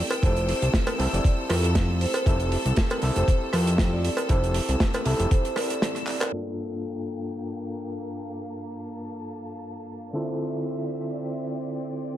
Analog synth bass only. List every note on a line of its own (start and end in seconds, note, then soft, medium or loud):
0.23 0.53 F1 loud
0.62 0.69 C2 medium
0.99 1.08 C2 loud
1.13 1.20 F1 medium
1.50 2.06 F2 medium
2.26 2.57 F1 loud
2.66 2.73 C2 loud
3.03 3.11 C2 loud
3.16 3.23 F1 medium
3.53 4.09 F2 medium
4.30 4.60 F1 loud
4.69 4.76 C2 medium
5.06 5.14 C2 loud
5.19 5.27 F1 medium